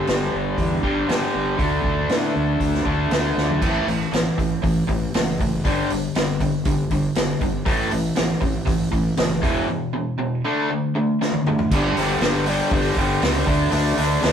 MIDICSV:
0, 0, Header, 1, 4, 480
1, 0, Start_track
1, 0, Tempo, 505476
1, 1515, Time_signature, 4, 2, 24, 8
1, 13602, End_track
2, 0, Start_track
2, 0, Title_t, "Overdriven electric guitar"
2, 0, Program_c, 0, 29
2, 0, Note_on_c, 0, 43, 79
2, 0, Note_on_c, 0, 50, 84
2, 0, Note_on_c, 0, 55, 93
2, 0, Note_on_c, 0, 62, 76
2, 772, Note_off_c, 0, 43, 0
2, 778, Note_off_c, 0, 55, 0
2, 780, Note_off_c, 0, 50, 0
2, 789, Note_on_c, 0, 55, 76
2, 806, Note_on_c, 0, 50, 70
2, 815, Note_on_c, 0, 43, 70
2, 1011, Note_off_c, 0, 43, 0
2, 1017, Note_off_c, 0, 55, 0
2, 1023, Note_on_c, 0, 43, 64
2, 1025, Note_off_c, 0, 50, 0
2, 1038, Note_on_c, 0, 50, 80
2, 1049, Note_on_c, 0, 55, 72
2, 1489, Note_off_c, 0, 50, 0
2, 1495, Note_off_c, 0, 43, 0
2, 1500, Note_on_c, 0, 50, 80
2, 1508, Note_off_c, 0, 55, 0
2, 1513, Note_on_c, 0, 57, 85
2, 1521, Note_off_c, 0, 62, 0
2, 1525, Note_on_c, 0, 62, 82
2, 2696, Note_off_c, 0, 50, 0
2, 2699, Note_off_c, 0, 62, 0
2, 2703, Note_off_c, 0, 57, 0
2, 2710, Note_on_c, 0, 62, 72
2, 2719, Note_on_c, 0, 57, 63
2, 2727, Note_on_c, 0, 50, 59
2, 2940, Note_off_c, 0, 62, 0
2, 2945, Note_off_c, 0, 57, 0
2, 2949, Note_off_c, 0, 50, 0
2, 2958, Note_on_c, 0, 50, 70
2, 2967, Note_on_c, 0, 57, 65
2, 2978, Note_on_c, 0, 62, 79
2, 3425, Note_off_c, 0, 50, 0
2, 3430, Note_off_c, 0, 57, 0
2, 3435, Note_off_c, 0, 62, 0
2, 3436, Note_on_c, 0, 45, 77
2, 3440, Note_on_c, 0, 57, 88
2, 3442, Note_on_c, 0, 52, 80
2, 3664, Note_off_c, 0, 45, 0
2, 3666, Note_off_c, 0, 57, 0
2, 3667, Note_off_c, 0, 52, 0
2, 3681, Note_on_c, 0, 45, 67
2, 3682, Note_on_c, 0, 52, 76
2, 3897, Note_off_c, 0, 45, 0
2, 3898, Note_off_c, 0, 52, 0
2, 3914, Note_on_c, 0, 45, 68
2, 3924, Note_on_c, 0, 52, 75
2, 4134, Note_off_c, 0, 45, 0
2, 4139, Note_off_c, 0, 52, 0
2, 4160, Note_on_c, 0, 45, 65
2, 4164, Note_on_c, 0, 52, 66
2, 4377, Note_off_c, 0, 45, 0
2, 4379, Note_off_c, 0, 52, 0
2, 4399, Note_on_c, 0, 45, 70
2, 4400, Note_on_c, 0, 52, 81
2, 4617, Note_off_c, 0, 45, 0
2, 4617, Note_off_c, 0, 52, 0
2, 4636, Note_on_c, 0, 45, 59
2, 4642, Note_on_c, 0, 52, 70
2, 4855, Note_off_c, 0, 45, 0
2, 4858, Note_off_c, 0, 52, 0
2, 4893, Note_on_c, 0, 45, 68
2, 4899, Note_on_c, 0, 52, 82
2, 5104, Note_off_c, 0, 45, 0
2, 5107, Note_off_c, 0, 52, 0
2, 5135, Note_on_c, 0, 45, 67
2, 5136, Note_on_c, 0, 52, 69
2, 5345, Note_off_c, 0, 45, 0
2, 5345, Note_off_c, 0, 52, 0
2, 5366, Note_on_c, 0, 43, 88
2, 5372, Note_on_c, 0, 50, 91
2, 5377, Note_on_c, 0, 55, 88
2, 5590, Note_off_c, 0, 43, 0
2, 5593, Note_off_c, 0, 50, 0
2, 5596, Note_off_c, 0, 55, 0
2, 5614, Note_on_c, 0, 43, 60
2, 5621, Note_on_c, 0, 50, 69
2, 5825, Note_off_c, 0, 43, 0
2, 5828, Note_off_c, 0, 50, 0
2, 5852, Note_on_c, 0, 43, 74
2, 5856, Note_on_c, 0, 50, 82
2, 6064, Note_off_c, 0, 43, 0
2, 6066, Note_off_c, 0, 50, 0
2, 6085, Note_on_c, 0, 43, 69
2, 6086, Note_on_c, 0, 50, 78
2, 6300, Note_off_c, 0, 43, 0
2, 6301, Note_off_c, 0, 50, 0
2, 6324, Note_on_c, 0, 43, 71
2, 6327, Note_on_c, 0, 50, 82
2, 6540, Note_off_c, 0, 43, 0
2, 6541, Note_off_c, 0, 50, 0
2, 6565, Note_on_c, 0, 43, 61
2, 6569, Note_on_c, 0, 50, 72
2, 6781, Note_off_c, 0, 43, 0
2, 6783, Note_off_c, 0, 50, 0
2, 6804, Note_on_c, 0, 43, 73
2, 6806, Note_on_c, 0, 50, 75
2, 7020, Note_off_c, 0, 43, 0
2, 7021, Note_off_c, 0, 50, 0
2, 7043, Note_on_c, 0, 43, 69
2, 7046, Note_on_c, 0, 50, 72
2, 7259, Note_off_c, 0, 43, 0
2, 7261, Note_off_c, 0, 50, 0
2, 7270, Note_on_c, 0, 45, 87
2, 7275, Note_on_c, 0, 52, 84
2, 7283, Note_on_c, 0, 57, 101
2, 7502, Note_off_c, 0, 45, 0
2, 7505, Note_off_c, 0, 52, 0
2, 7509, Note_off_c, 0, 57, 0
2, 7514, Note_on_c, 0, 45, 68
2, 7520, Note_on_c, 0, 52, 71
2, 7735, Note_off_c, 0, 45, 0
2, 7738, Note_off_c, 0, 52, 0
2, 7753, Note_on_c, 0, 45, 75
2, 7754, Note_on_c, 0, 52, 80
2, 7975, Note_off_c, 0, 45, 0
2, 7975, Note_off_c, 0, 52, 0
2, 7986, Note_on_c, 0, 45, 67
2, 7993, Note_on_c, 0, 52, 78
2, 8211, Note_off_c, 0, 45, 0
2, 8214, Note_off_c, 0, 52, 0
2, 8224, Note_on_c, 0, 45, 69
2, 8230, Note_on_c, 0, 52, 81
2, 8450, Note_off_c, 0, 45, 0
2, 8453, Note_off_c, 0, 52, 0
2, 8468, Note_on_c, 0, 45, 70
2, 8471, Note_on_c, 0, 52, 75
2, 8692, Note_off_c, 0, 45, 0
2, 8693, Note_off_c, 0, 52, 0
2, 8712, Note_on_c, 0, 45, 70
2, 8712, Note_on_c, 0, 52, 82
2, 8933, Note_off_c, 0, 45, 0
2, 8934, Note_off_c, 0, 52, 0
2, 8946, Note_on_c, 0, 40, 79
2, 8952, Note_on_c, 0, 47, 89
2, 8952, Note_on_c, 0, 52, 92
2, 9180, Note_off_c, 0, 40, 0
2, 9183, Note_off_c, 0, 47, 0
2, 9183, Note_off_c, 0, 52, 0
2, 9203, Note_on_c, 0, 40, 68
2, 9205, Note_on_c, 0, 47, 85
2, 9419, Note_off_c, 0, 40, 0
2, 9419, Note_off_c, 0, 47, 0
2, 9436, Note_on_c, 0, 40, 75
2, 9440, Note_on_c, 0, 47, 80
2, 9655, Note_off_c, 0, 40, 0
2, 9657, Note_off_c, 0, 47, 0
2, 9674, Note_on_c, 0, 40, 77
2, 9680, Note_on_c, 0, 47, 77
2, 9894, Note_off_c, 0, 40, 0
2, 9897, Note_off_c, 0, 47, 0
2, 9923, Note_on_c, 0, 50, 87
2, 9929, Note_on_c, 0, 57, 95
2, 9935, Note_on_c, 0, 62, 99
2, 10147, Note_off_c, 0, 50, 0
2, 10150, Note_off_c, 0, 57, 0
2, 10153, Note_off_c, 0, 62, 0
2, 10162, Note_on_c, 0, 50, 79
2, 10168, Note_on_c, 0, 57, 85
2, 10377, Note_off_c, 0, 50, 0
2, 10380, Note_off_c, 0, 57, 0
2, 10400, Note_on_c, 0, 50, 66
2, 10409, Note_on_c, 0, 57, 73
2, 10616, Note_off_c, 0, 50, 0
2, 10621, Note_off_c, 0, 57, 0
2, 10650, Note_on_c, 0, 50, 73
2, 10654, Note_on_c, 0, 57, 82
2, 10860, Note_off_c, 0, 50, 0
2, 10863, Note_off_c, 0, 57, 0
2, 10895, Note_on_c, 0, 50, 68
2, 10902, Note_on_c, 0, 57, 86
2, 11103, Note_off_c, 0, 50, 0
2, 11106, Note_off_c, 0, 57, 0
2, 11137, Note_on_c, 0, 43, 84
2, 11137, Note_on_c, 0, 50, 90
2, 11141, Note_on_c, 0, 55, 97
2, 11368, Note_off_c, 0, 43, 0
2, 11374, Note_off_c, 0, 55, 0
2, 11376, Note_off_c, 0, 50, 0
2, 11380, Note_on_c, 0, 43, 75
2, 11385, Note_on_c, 0, 55, 91
2, 11387, Note_on_c, 0, 50, 84
2, 11599, Note_off_c, 0, 43, 0
2, 11603, Note_off_c, 0, 50, 0
2, 11611, Note_off_c, 0, 55, 0
2, 11611, Note_on_c, 0, 43, 83
2, 11615, Note_on_c, 0, 50, 81
2, 11622, Note_on_c, 0, 55, 91
2, 11837, Note_off_c, 0, 43, 0
2, 11838, Note_off_c, 0, 50, 0
2, 11843, Note_off_c, 0, 55, 0
2, 11848, Note_on_c, 0, 43, 82
2, 11849, Note_on_c, 0, 50, 79
2, 11854, Note_on_c, 0, 55, 99
2, 12068, Note_off_c, 0, 43, 0
2, 12075, Note_off_c, 0, 50, 0
2, 12075, Note_off_c, 0, 55, 0
2, 12079, Note_on_c, 0, 43, 101
2, 12086, Note_on_c, 0, 55, 98
2, 12087, Note_on_c, 0, 50, 104
2, 12315, Note_off_c, 0, 43, 0
2, 12317, Note_off_c, 0, 50, 0
2, 12322, Note_off_c, 0, 55, 0
2, 12326, Note_on_c, 0, 43, 86
2, 12328, Note_on_c, 0, 50, 95
2, 12333, Note_on_c, 0, 55, 89
2, 12548, Note_off_c, 0, 43, 0
2, 12555, Note_off_c, 0, 50, 0
2, 12559, Note_on_c, 0, 43, 78
2, 12560, Note_off_c, 0, 55, 0
2, 12566, Note_on_c, 0, 50, 83
2, 12572, Note_on_c, 0, 55, 86
2, 12778, Note_off_c, 0, 50, 0
2, 12781, Note_off_c, 0, 43, 0
2, 12787, Note_off_c, 0, 55, 0
2, 12789, Note_on_c, 0, 50, 94
2, 12798, Note_on_c, 0, 57, 93
2, 12803, Note_on_c, 0, 62, 98
2, 13015, Note_off_c, 0, 50, 0
2, 13024, Note_off_c, 0, 57, 0
2, 13024, Note_off_c, 0, 62, 0
2, 13027, Note_on_c, 0, 50, 84
2, 13035, Note_on_c, 0, 57, 89
2, 13036, Note_on_c, 0, 62, 93
2, 13270, Note_off_c, 0, 50, 0
2, 13273, Note_off_c, 0, 57, 0
2, 13275, Note_off_c, 0, 62, 0
2, 13281, Note_on_c, 0, 50, 83
2, 13284, Note_on_c, 0, 57, 84
2, 13287, Note_on_c, 0, 62, 98
2, 13500, Note_off_c, 0, 50, 0
2, 13506, Note_off_c, 0, 57, 0
2, 13511, Note_off_c, 0, 62, 0
2, 13511, Note_on_c, 0, 50, 84
2, 13517, Note_on_c, 0, 57, 93
2, 13522, Note_on_c, 0, 62, 89
2, 13602, Note_off_c, 0, 50, 0
2, 13602, Note_off_c, 0, 57, 0
2, 13602, Note_off_c, 0, 62, 0
2, 13602, End_track
3, 0, Start_track
3, 0, Title_t, "Fingered electric bass"
3, 0, Program_c, 1, 33
3, 79, Note_on_c, 1, 31, 86
3, 263, Note_off_c, 1, 31, 0
3, 322, Note_on_c, 1, 31, 83
3, 506, Note_off_c, 1, 31, 0
3, 544, Note_on_c, 1, 40, 80
3, 734, Note_off_c, 1, 40, 0
3, 787, Note_on_c, 1, 31, 83
3, 977, Note_off_c, 1, 31, 0
3, 1036, Note_on_c, 1, 43, 87
3, 1223, Note_off_c, 1, 43, 0
3, 1281, Note_on_c, 1, 31, 81
3, 1466, Note_off_c, 1, 31, 0
3, 1510, Note_on_c, 1, 38, 89
3, 1700, Note_off_c, 1, 38, 0
3, 1751, Note_on_c, 1, 38, 76
3, 1940, Note_off_c, 1, 38, 0
3, 1986, Note_on_c, 1, 45, 79
3, 2177, Note_off_c, 1, 45, 0
3, 2237, Note_on_c, 1, 38, 76
3, 2425, Note_off_c, 1, 38, 0
3, 2468, Note_on_c, 1, 38, 83
3, 2659, Note_off_c, 1, 38, 0
3, 2713, Note_on_c, 1, 38, 80
3, 2903, Note_off_c, 1, 38, 0
3, 2955, Note_on_c, 1, 38, 76
3, 3144, Note_off_c, 1, 38, 0
3, 3197, Note_on_c, 1, 38, 82
3, 3385, Note_off_c, 1, 38, 0
3, 3433, Note_on_c, 1, 33, 88
3, 3586, Note_off_c, 1, 33, 0
3, 3676, Note_on_c, 1, 33, 80
3, 3829, Note_off_c, 1, 33, 0
3, 3912, Note_on_c, 1, 33, 82
3, 4066, Note_off_c, 1, 33, 0
3, 4162, Note_on_c, 1, 33, 80
3, 4313, Note_off_c, 1, 33, 0
3, 4402, Note_on_c, 1, 33, 86
3, 4553, Note_off_c, 1, 33, 0
3, 4644, Note_on_c, 1, 33, 84
3, 4794, Note_off_c, 1, 33, 0
3, 4886, Note_on_c, 1, 30, 85
3, 5364, Note_off_c, 1, 30, 0
3, 5364, Note_on_c, 1, 31, 89
3, 5515, Note_off_c, 1, 31, 0
3, 5620, Note_on_c, 1, 31, 79
3, 5766, Note_off_c, 1, 31, 0
3, 5850, Note_on_c, 1, 31, 83
3, 6150, Note_off_c, 1, 31, 0
3, 6327, Note_on_c, 1, 31, 89
3, 6477, Note_off_c, 1, 31, 0
3, 6557, Note_on_c, 1, 31, 89
3, 6710, Note_off_c, 1, 31, 0
3, 6806, Note_on_c, 1, 31, 87
3, 6956, Note_off_c, 1, 31, 0
3, 7037, Note_on_c, 1, 31, 83
3, 7274, Note_off_c, 1, 31, 0
3, 7274, Note_on_c, 1, 33, 91
3, 7428, Note_off_c, 1, 33, 0
3, 7531, Note_on_c, 1, 33, 83
3, 7679, Note_off_c, 1, 33, 0
3, 7765, Note_on_c, 1, 33, 88
3, 7915, Note_off_c, 1, 33, 0
3, 7990, Note_on_c, 1, 33, 85
3, 8145, Note_off_c, 1, 33, 0
3, 8234, Note_on_c, 1, 33, 87
3, 8388, Note_off_c, 1, 33, 0
3, 8476, Note_on_c, 1, 33, 89
3, 8629, Note_off_c, 1, 33, 0
3, 8713, Note_on_c, 1, 30, 92
3, 8955, Note_off_c, 1, 30, 0
3, 8955, Note_on_c, 1, 28, 89
3, 9108, Note_off_c, 1, 28, 0
3, 11122, Note_on_c, 1, 31, 91
3, 11305, Note_off_c, 1, 31, 0
3, 11353, Note_on_c, 1, 31, 81
3, 11539, Note_off_c, 1, 31, 0
3, 11592, Note_on_c, 1, 31, 93
3, 11963, Note_off_c, 1, 31, 0
3, 12074, Note_on_c, 1, 31, 91
3, 12259, Note_off_c, 1, 31, 0
3, 12316, Note_on_c, 1, 31, 89
3, 12500, Note_off_c, 1, 31, 0
3, 12551, Note_on_c, 1, 37, 95
3, 12736, Note_off_c, 1, 37, 0
3, 12798, Note_on_c, 1, 38, 92
3, 12980, Note_off_c, 1, 38, 0
3, 13026, Note_on_c, 1, 38, 96
3, 13212, Note_off_c, 1, 38, 0
3, 13267, Note_on_c, 1, 38, 85
3, 13453, Note_off_c, 1, 38, 0
3, 13516, Note_on_c, 1, 38, 93
3, 13602, Note_off_c, 1, 38, 0
3, 13602, End_track
4, 0, Start_track
4, 0, Title_t, "Drums"
4, 69, Note_on_c, 9, 46, 42
4, 80, Note_on_c, 9, 38, 97
4, 164, Note_off_c, 9, 46, 0
4, 175, Note_off_c, 9, 38, 0
4, 549, Note_on_c, 9, 36, 78
4, 552, Note_on_c, 9, 46, 42
4, 644, Note_off_c, 9, 36, 0
4, 647, Note_off_c, 9, 46, 0
4, 790, Note_on_c, 9, 36, 77
4, 885, Note_off_c, 9, 36, 0
4, 1036, Note_on_c, 9, 46, 44
4, 1047, Note_on_c, 9, 38, 104
4, 1131, Note_off_c, 9, 46, 0
4, 1142, Note_off_c, 9, 38, 0
4, 1509, Note_on_c, 9, 36, 96
4, 1513, Note_on_c, 9, 46, 46
4, 1604, Note_off_c, 9, 36, 0
4, 1607, Note_off_c, 9, 46, 0
4, 1749, Note_on_c, 9, 36, 79
4, 1844, Note_off_c, 9, 36, 0
4, 1988, Note_on_c, 9, 46, 47
4, 1999, Note_on_c, 9, 38, 99
4, 2083, Note_off_c, 9, 46, 0
4, 2094, Note_off_c, 9, 38, 0
4, 2470, Note_on_c, 9, 36, 74
4, 2472, Note_on_c, 9, 46, 51
4, 2565, Note_off_c, 9, 36, 0
4, 2567, Note_off_c, 9, 46, 0
4, 2603, Note_on_c, 9, 38, 29
4, 2698, Note_off_c, 9, 38, 0
4, 2711, Note_on_c, 9, 36, 73
4, 2806, Note_off_c, 9, 36, 0
4, 2953, Note_on_c, 9, 46, 48
4, 2964, Note_on_c, 9, 38, 98
4, 3048, Note_off_c, 9, 46, 0
4, 3059, Note_off_c, 9, 38, 0
4, 3206, Note_on_c, 9, 38, 54
4, 3301, Note_off_c, 9, 38, 0
4, 3316, Note_on_c, 9, 43, 80
4, 3411, Note_off_c, 9, 43, 0
4, 3435, Note_on_c, 9, 36, 100
4, 3438, Note_on_c, 9, 49, 101
4, 3530, Note_off_c, 9, 36, 0
4, 3533, Note_off_c, 9, 49, 0
4, 3685, Note_on_c, 9, 46, 52
4, 3780, Note_off_c, 9, 46, 0
4, 3925, Note_on_c, 9, 46, 65
4, 3936, Note_on_c, 9, 38, 103
4, 4020, Note_off_c, 9, 46, 0
4, 4031, Note_off_c, 9, 38, 0
4, 4162, Note_on_c, 9, 36, 76
4, 4169, Note_on_c, 9, 46, 50
4, 4257, Note_off_c, 9, 36, 0
4, 4264, Note_off_c, 9, 46, 0
4, 4403, Note_on_c, 9, 36, 95
4, 4404, Note_on_c, 9, 46, 70
4, 4498, Note_off_c, 9, 36, 0
4, 4499, Note_off_c, 9, 46, 0
4, 4643, Note_on_c, 9, 36, 70
4, 4643, Note_on_c, 9, 46, 49
4, 4738, Note_off_c, 9, 36, 0
4, 4738, Note_off_c, 9, 46, 0
4, 4882, Note_on_c, 9, 46, 75
4, 4893, Note_on_c, 9, 38, 105
4, 4977, Note_off_c, 9, 46, 0
4, 4988, Note_off_c, 9, 38, 0
4, 5125, Note_on_c, 9, 36, 80
4, 5128, Note_on_c, 9, 46, 52
4, 5220, Note_off_c, 9, 36, 0
4, 5223, Note_off_c, 9, 46, 0
4, 5365, Note_on_c, 9, 46, 78
4, 5366, Note_on_c, 9, 36, 102
4, 5460, Note_off_c, 9, 36, 0
4, 5460, Note_off_c, 9, 46, 0
4, 5603, Note_on_c, 9, 46, 55
4, 5698, Note_off_c, 9, 46, 0
4, 5841, Note_on_c, 9, 46, 73
4, 5853, Note_on_c, 9, 38, 103
4, 5936, Note_off_c, 9, 46, 0
4, 5948, Note_off_c, 9, 38, 0
4, 6080, Note_on_c, 9, 46, 55
4, 6081, Note_on_c, 9, 36, 76
4, 6175, Note_off_c, 9, 46, 0
4, 6176, Note_off_c, 9, 36, 0
4, 6316, Note_on_c, 9, 46, 74
4, 6321, Note_on_c, 9, 36, 108
4, 6411, Note_off_c, 9, 46, 0
4, 6416, Note_off_c, 9, 36, 0
4, 6557, Note_on_c, 9, 46, 52
4, 6560, Note_on_c, 9, 36, 68
4, 6652, Note_off_c, 9, 46, 0
4, 6655, Note_off_c, 9, 36, 0
4, 6793, Note_on_c, 9, 46, 68
4, 6804, Note_on_c, 9, 38, 105
4, 6888, Note_off_c, 9, 46, 0
4, 6899, Note_off_c, 9, 38, 0
4, 7036, Note_on_c, 9, 46, 53
4, 7037, Note_on_c, 9, 36, 81
4, 7131, Note_off_c, 9, 46, 0
4, 7132, Note_off_c, 9, 36, 0
4, 7273, Note_on_c, 9, 46, 72
4, 7276, Note_on_c, 9, 36, 105
4, 7368, Note_off_c, 9, 46, 0
4, 7371, Note_off_c, 9, 36, 0
4, 7513, Note_on_c, 9, 46, 54
4, 7608, Note_off_c, 9, 46, 0
4, 7748, Note_on_c, 9, 46, 69
4, 7759, Note_on_c, 9, 38, 109
4, 7842, Note_off_c, 9, 46, 0
4, 7854, Note_off_c, 9, 38, 0
4, 7989, Note_on_c, 9, 46, 50
4, 7993, Note_on_c, 9, 36, 79
4, 8084, Note_off_c, 9, 46, 0
4, 8088, Note_off_c, 9, 36, 0
4, 8234, Note_on_c, 9, 36, 106
4, 8235, Note_on_c, 9, 46, 70
4, 8329, Note_off_c, 9, 36, 0
4, 8330, Note_off_c, 9, 46, 0
4, 8476, Note_on_c, 9, 36, 72
4, 8479, Note_on_c, 9, 46, 50
4, 8571, Note_off_c, 9, 36, 0
4, 8574, Note_off_c, 9, 46, 0
4, 8710, Note_on_c, 9, 46, 71
4, 8722, Note_on_c, 9, 38, 106
4, 8805, Note_off_c, 9, 46, 0
4, 8817, Note_off_c, 9, 38, 0
4, 8956, Note_on_c, 9, 36, 104
4, 8961, Note_on_c, 9, 46, 54
4, 9051, Note_off_c, 9, 36, 0
4, 9056, Note_off_c, 9, 46, 0
4, 10651, Note_on_c, 9, 38, 60
4, 10746, Note_off_c, 9, 38, 0
4, 10765, Note_on_c, 9, 48, 66
4, 10860, Note_off_c, 9, 48, 0
4, 10887, Note_on_c, 9, 45, 88
4, 10982, Note_off_c, 9, 45, 0
4, 11003, Note_on_c, 9, 43, 84
4, 11098, Note_off_c, 9, 43, 0
4, 11124, Note_on_c, 9, 36, 113
4, 11124, Note_on_c, 9, 49, 116
4, 11219, Note_off_c, 9, 36, 0
4, 11219, Note_off_c, 9, 49, 0
4, 11364, Note_on_c, 9, 46, 61
4, 11375, Note_on_c, 9, 38, 33
4, 11459, Note_off_c, 9, 46, 0
4, 11470, Note_off_c, 9, 38, 0
4, 11593, Note_on_c, 9, 46, 76
4, 11604, Note_on_c, 9, 38, 112
4, 11688, Note_off_c, 9, 46, 0
4, 11699, Note_off_c, 9, 38, 0
4, 11830, Note_on_c, 9, 46, 56
4, 11925, Note_off_c, 9, 46, 0
4, 12066, Note_on_c, 9, 46, 72
4, 12074, Note_on_c, 9, 36, 113
4, 12161, Note_off_c, 9, 46, 0
4, 12169, Note_off_c, 9, 36, 0
4, 12312, Note_on_c, 9, 46, 56
4, 12314, Note_on_c, 9, 36, 86
4, 12407, Note_off_c, 9, 46, 0
4, 12409, Note_off_c, 9, 36, 0
4, 12553, Note_on_c, 9, 46, 80
4, 12565, Note_on_c, 9, 38, 109
4, 12648, Note_off_c, 9, 46, 0
4, 12660, Note_off_c, 9, 38, 0
4, 12793, Note_on_c, 9, 36, 105
4, 12795, Note_on_c, 9, 46, 60
4, 12887, Note_off_c, 9, 36, 0
4, 12890, Note_off_c, 9, 46, 0
4, 13024, Note_on_c, 9, 46, 87
4, 13119, Note_off_c, 9, 46, 0
4, 13271, Note_on_c, 9, 46, 66
4, 13366, Note_off_c, 9, 46, 0
4, 13508, Note_on_c, 9, 46, 83
4, 13519, Note_on_c, 9, 38, 111
4, 13602, Note_off_c, 9, 38, 0
4, 13602, Note_off_c, 9, 46, 0
4, 13602, End_track
0, 0, End_of_file